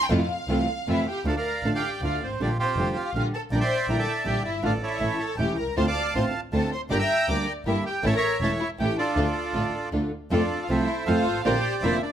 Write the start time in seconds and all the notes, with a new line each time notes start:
0.04 G5
0.10 F2 C3 E3 A3 C4 E4 F4 A4 F5
0.48 C2 C3 E3 A3 C4 E4 F4 A4
0.87 F2 C3 E3 A3 C4 E4 F4 A4 E5
1.08 G4 G5
1.25 D2 D3 A3 D4 F4 A4 D5 F5 A5
1.36 A#4 D5 F5 A#5
1.63 A1 D3 A3 D4 F4 A4 A5
1.74 G4 D5 G5
2.01 D2 D3 A3 D4 F4 F5
2.21 G#1 C4 C5
2.39 A#1 D3 G3 D4 F4 G4 D5
2.59 C4 F4 G4 C5
2.77 F1 D3 G3 D4 G4
2.96 F4 F5
3.14 A#1 D3 G3 D4 G4 F5
3.19 F4
3.34 A4 A5
3.51 A#1 D3 G3 D4 E4 A#4 D5 G5 A#5
3.60 C5 E5 G5 C6
3.88 A#1 D3 G3 D4 E4 A#4 A#5
3.99 A4 D5 E5 A5
4.24 A#1 D3 G3 D4 E4 G4 G5
4.44 G1 E4 E5
4.62 A1 D3 A3 D4 F4 A4 D5 F5
4.83 E4 A4 C#5 E5
5.00 A1 E3 A3 C#4 E4
5.20 A4 A5
5.37 E1 E3 A3 C#4 E4 G4 G5
5.56 C2 A#4 A#5
5.75 D2 D3 A3 C4 D4 F4 C5 F5 A5 C6
5.87 D5 F5 A5 D6
6.14 A1 D3 A3 C4 D4 F4 C5 C6
6.52 D2 D3 A3 C4 D4 F4 A4 C5 A5
6.72 C5 C6
6.89 G1 D3 G3 A#3 D4 G4 A#4 D5 G5 A#5 D6
6.99 E5 G5 A#5 E6
7.28 D2 D3 G3 A#3 D4 G4 A#4 D5 D6
7.65 G1 D3 G3 A#3 D4 E4 G4 A#4 E5
7.85 G4 G5
8.03 A1 E3 A3 C#4 E4 A4 C#5 E5 A5
8.12 A#4 A#5
8.17 C#5 E5
8.41 E1 E3 A3 C#4 E4 A4 A5
8.60 E4 E5
8.79 A1 E3 A3 C#4 E4 G4 A4 G5
8.98 D4 F4 A4 D5
9.16 D2 D3 A3 D4 F4 A4
9.54 A1 D3 A3 D4 F4 A4
9.91 D2 D3 A3 D4 F4 A4
10.31 F2 C3 F3 A3 C4 D4 F4 A4 D5
10.62 F4 F5
10.68 C2 C3 F3 A3 C4 E4 F4 A4 C5 E5
11.06 F2 C3 F3 A3 C4 F4 A4 C5 F5
11.26 G#1
11.44 A#1 D3 A#3 C4 D4 F4 G4 A#4 C5 D5 G5
11.82 F1 D3 A#3 C4 D4 E4 F4 A#4 E5
12.02 D4 D5